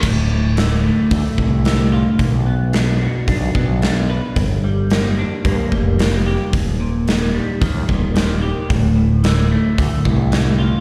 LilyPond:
<<
  \new Staff \with { instrumentName = "Clean electric guitar" } { \clef bass \time 4/4 \key g \minor \tempo 4 = 111 d,8 a,8 d8 a8 d8 a,8 d8 f'8 | b,8 b8 d'8 fis'8 d'8 b8 d'8 b'8 | g,8 g8 bes8 d'8 bes8 g8 bes8 g'8 | ees,8 bes,8 ees8 g8 ees8 bes,8 ees8 g'8 |
d,8 a,8 d8 a8 d8 a,8 d8 f'8 | }
  \new Staff \with { instrumentName = "Fretless electric bass" } { \clef bass \time 4/4 \key g \minor d,,2 d,16 r16 c,4. | b,,2 b,,8 b,,4. | g,,2 g,16 r16 f,,4. | ees,,2 ees,8 ees,,4. |
d,,2 d,16 r16 c,4. | }
  \new DrumStaff \with { instrumentName = "Drums" } \drummode { \time 4/4 <cymc bd>4 <hho sn>4 <hho bd>8 bd8 <hho sn>4 | <hho bd>4 <hho sn>4 <hho bd>8 bd8 <hho sn>4 | <hho bd>4 <hho sn>4 <hho bd>8 bd8 <hho sn>4 | <hho bd>4 <hho sn>4 <hho bd>8 bd8 <hho sn>4 |
<hho bd>4 <hho sn>4 <hho bd>8 bd8 <hho sn>4 | }
>>